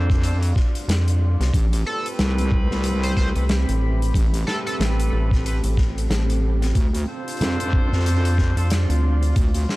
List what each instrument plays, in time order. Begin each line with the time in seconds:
Already playing: wobble bass F2, horn section D4 F4 A4 C5, analog synth pad D4 D5 F5, ambient pad F4 D5 C6
0.10 kick, snare
0.23 horn section D4 F4 A4 C5, closed hi-hat
0.43 closed hi-hat
0.56 kick, snare
0.75 closed hi-hat
0.88 analog synth bass F2, snare, closed hi-hat
1.08 closed hi-hat
1.40 analog synth bass C2, snare, closed hi-hat
1.54 wobble bass A1, analog synth pad A3 C4 G4 B4, ambient pad G4, kick, closed hi-hat
1.63 ambient pad C4
1.73 closed hi-hat
1.80 ambient pad B5
1.86 horn section C4 G4 A4 B4, analog synth lead A4
2.06 closed hi-hat
2.19 wobble bass C2, snare, closed hi-hat
2.38 closed hi-hat
2.52 kick
2.71 wobble bass C2, snare
2.84 closed hi-hat
3.03 analog synth lead C5, closed hi-hat
3.17 analog synth lead C5, kick, snare
3.35 analog synth bass C2, horn section C4 G4 A4 B4, closed hi-hat
3.49 snare, closed hi-hat
3.69 analog synth bass A1, closed hi-hat
4.02 closed hi-hat
4.14 wobble bass A1, analog synth pad A4, kick, closed hi-hat
4.34 closed hi-hat
4.47 horn section C4 G4 A4 B4, analog synth lead A4, snare
4.66 analog synth lead A4, closed hi-hat
4.80 analog synth bass A1, snare, closed hi-hat
5.00 closed hi-hat
5.12 analog synth bass A1
5.31 kick, snare
5.45 horn section C4 G4 A4 B4, closed hi-hat
5.64 analog synth bass A1, closed hi-hat
5.77 kick, snare
5.98 closed hi-hat
6.09 analog synth bass A1, snare, closed hi-hat
6.30 closed hi-hat
6.62 snare, closed hi-hat
6.75 wobble bass D2, analog synth pad D4 F5, ambient pad F4, kick, closed hi-hat
6.94 ambient pad D5 C6, closed hi-hat
7.08 horn section D4 F4 A4 C5
7.28 closed hi-hat
7.31 closed hi-hat
7.37 wobble bass F2, closed hi-hat
7.41 snare, closed hi-hat
7.52 closed hi-hat
7.60 closed hi-hat
7.73 kick
7.92 wobble bass F2, snare
7.99 snare
8.06 snare, closed hi-hat
8.16 snare
8.25 closed hi-hat
8.38 kick, snare
8.57 analog synth bass F2, horn section D4 F4 A4 C5, closed hi-hat
8.70 snare, closed hi-hat
8.90 analog synth bass D2, closed hi-hat
9.23 closed hi-hat
9.36 wobble bass D2, kick, closed hi-hat
9.55 closed hi-hat
9.69 horn section D4 F4 A4 C5, snare